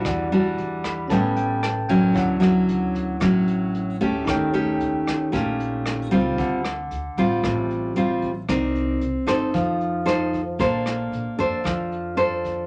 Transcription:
Already playing: G3 D4 F#4
0.01 E2 E4 D5, kick, cross-stick, closed hi-hat
0.05 E3 F#5
0.32 G3 D4 F#4, closed hi-hat
0.58 E2, closed hi-hat
0.84 B5, kick, cross-stick, closed hi-hat
1.08 A1 A2 G3 B3 C#4 A4 B4 A5, kick, closed hi-hat
1.12 C#4 G5
1.37 G5, closed hi-hat
1.63 A5, cross-stick, closed hi-hat
1.89 A1 F#3 C#4 E4 G5, kick, closed hi-hat
2.13 D2 D3 E4 C#5, kick, closed hi-hat
2.17 D4 F#5
2.40 F#3 C#4 E4, cross-stick, closed hi-hat
2.69 D2, closed hi-hat
2.95 kick, closed hi-hat
3.20 A1 A2 F#3 C#4 E4, kick, cross-stick, closed hi-hat
3.47 closed hi-hat
3.74 closed hi-hat
4.01 D2 A3 C#4 G4, kick, closed hi-hat
4.25 D#2 D#3 D#4 A4 C#5, kick, cross-stick, closed hi-hat
4.30 G5
4.53 A3 C#4 G4, closed hi-hat
4.80 D#2, closed hi-hat
5.07 kick, cross-stick, closed hi-hat
5.32 A#1 A#2 A3 C#4 G4, kick, closed hi-hat
5.60 closed hi-hat
5.86 cross-stick, closed hi-hat
6.11 C#2 G3 C4 F4, kick, closed hi-hat
6.38 D2 D3, kick, closed hi-hat
6.65 cross-stick, closed hi-hat
6.91 D2, closed hi-hat
7.17 A1 G3 C4 F4, kick, closed hi-hat
7.43 A1 A2, kick, cross-stick, closed hi-hat
7.70 closed hi-hat
7.96 G3 C4 F4, closed hi-hat
8.22 kick, closed hi-hat
8.49 C2 C4 D#4 A#4 D5, kick, cross-stick, closed hi-hat
8.75 closed hi-hat
9.01 C2, closed hi-hat
9.27 G2 D#4 A4 C5, kick, cross-stick, closed hi-hat
9.54 F2 F3, kick, closed hi-hat
9.81 closed hi-hat
10.06 D#4 A4 C5, cross-stick, closed hi-hat
10.33 kick, closed hi-hat
10.59 A#1 A#3 D4 A4 C5, kick, closed hi-hat
10.86 cross-stick, closed hi-hat
11.12 A#1, closed hi-hat
11.39 F2 D4 A4 C5, kick, closed hi-hat
11.64 F2 F3, kick, cross-stick, closed hi-hat
11.92 closed hi-hat
12.17 D4 A4 C5, closed hi-hat
12.44 kick, closed hi-hat

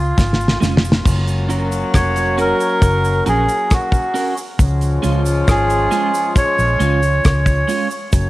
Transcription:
Already playing: C#2 F4
0.18 G#1, kick, snare, cabasa
0.33 snare
0.41 cabasa
0.48 snare
0.60 F1 G#3 C#4 F4, snare, cabasa
0.77 snare
0.85 cabasa
0.92 snare
1.06 F#1 F#3 A#3 C#4 F#4, kick, crash, cabasa
1.27 closed hi-hat, cabasa
1.49 C#4 F#4 A#4, closed hi-hat, cabasa
1.72 closed hi-hat, cabasa
1.94 F1 C#5, kick, cross-stick, closed hi-hat, cabasa
2.16 muted clean electric guitar stroke, closed hi-hat, cabasa
2.38 C#4 F#4 A#4, closed hi-hat, cabasa
2.60 closed hi-hat, cabasa
2.82 F#1, kick, closed hi-hat, cabasa
3.05 cabasa
3.26 A#1 C#4 F#4 G#4 A#4, closed hi-hat, cabasa
3.49 closed hi-hat, cabasa
3.70 F#4, kick, cross-stick, closed hi-hat, cabasa
3.92 kick, cabasa
4.14 C#4 F#4 A#4, open hi-hat, cabasa
4.37 cabasa
4.59 C#2 F3 G#3 C#4 F4, kick, closed hi-hat, cabasa
4.81 closed hi-hat, cabasa
5.02 C#2 G#3 C#4 F4, closed hi-hat, cabasa
5.26 closed hi-hat, cabasa
5.48 G#1 G#4, kick, cross-stick, closed hi-hat, cabasa
5.70 closed hi-hat, cabasa
5.91 G#3 C#4 F4, closed hi-hat, cabasa
6.13 muted clean electric guitar stroke, closed hi-hat, cabasa
6.36 C#5, kick, closed hi-hat, cabasa
6.59 A#1, cabasa
6.79 C#2 G#3 C#4 F4, closed hi-hat, cabasa
7.03 closed hi-hat, cabasa
7.25 C#2 C#5, kick, cross-stick, closed hi-hat, cabasa
7.46 kick, cabasa
7.68 G#3 C#4 F4, open hi-hat, cabasa
7.91 cabasa
8.12 F#1 F#3 A#3 C#4 F#4, kick, closed hi-hat, cabasa

